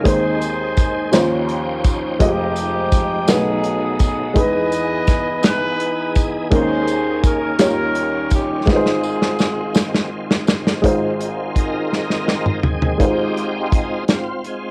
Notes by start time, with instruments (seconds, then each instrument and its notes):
Already playing: tonewheel organ G#3
0.04 upright piano D#2 D#3 G#3 C4 D#4 C5, tonewheel organ D#3 G#4 C5, horn section D#4 G#4 C5, kick, closed hi-hat
0.41 closed hi-hat, tambourine
0.77 kick, closed hi-hat, tambourine
1.12 upright piano D#2 D#3 F3 C#4 F4 C5, tonewheel organ F3 C#4 D#4 G5, snare, closed hi-hat, tambourine
1.49 closed hi-hat
1.84 kick, closed hi-hat, tambourine
2.19 upright piano F1 F2 G#3 F4 G4 D#5, tonewheel organ F3 G#3, horn section C4 D#4 G4, kick, closed hi-hat
2.56 closed hi-hat, tambourine
2.92 kick, closed hi-hat, tambourine
3.27 upright piano B1 B2 A3 D#4 F#4 B4, tonewheel organ F#3 A3 B3, horn section D#4 G#4, snare, closed hi-hat, tambourine
3.64 closed hi-hat
3.99 horn section G#4, kick, closed hi-hat, tambourine
4.34 upright piano E2 E3 G#3 D#4 G#4, tonewheel organ E3 B3 G#4, kick, closed hi-hat
4.38 horn section G#4 B4 D#5, upright piano B4
4.72 closed hi-hat, tambourine
5.07 kick, snare, closed hi-hat, tambourine
5.43 horn section D#4 G#4 B4, snare, closed hi-hat, tambourine
5.80 closed hi-hat
6.16 kick, closed hi-hat, tambourine
6.50 upright piano D#2 D#3 G#3 C#4 D#4 A#4, tonewheel organ D#3 A#3 C#4, horn section G#4 C5, kick, closed hi-hat
6.88 closed hi-hat, tambourine
7.24 horn section A#4, kick, closed hi-hat, tambourine
7.59 upright piano D#2 D#3 G3 D#4 F4 C#5, tonewheel organ G3 F4, horn section C#4, snare, closed hi-hat, tambourine
7.63 horn section G4 A#4
7.95 closed hi-hat
8.30 horn section G4, kick, closed hi-hat, tambourine
8.66 upright piano G#1 G#2 G#3 D#4 F4 B4, tonewheel organ G#3 C4, horn section F4, kick, snare
8.70 horn section C4 G#4
8.76 upright piano C5
8.86 snare
9.03 tambourine
9.22 snare
9.39 snare, tambourine
9.75 snare, tambourine
9.94 snare
10.31 snare
10.47 snare, tambourine
10.67 snare
10.82 upright piano G#1 G#2 G#3 D#4 F4 C5, tonewheel organ D#3 G#3 C4 F4, kick, closed hi-hat
11.21 closed hi-hat
11.56 tonewheel organ D#4 F4 A#4, kick, closed hi-hat
11.93 snare
12.10 snare
12.28 snare
12.46 mid tom
12.63 tonewheel organ G#4, floor tom
12.82 floor tom
12.98 upright piano G#1 G#2 G#3 D#4 F4 C5, tonewheel organ G#3 C4 D#4 F4 G4, kick, closed hi-hat
13.37 closed hi-hat
13.72 kick, closed hi-hat
14.08 tonewheel organ C4 F4, snare, closed hi-hat
14.44 tonewheel organ G#3 C4 F4, closed hi-hat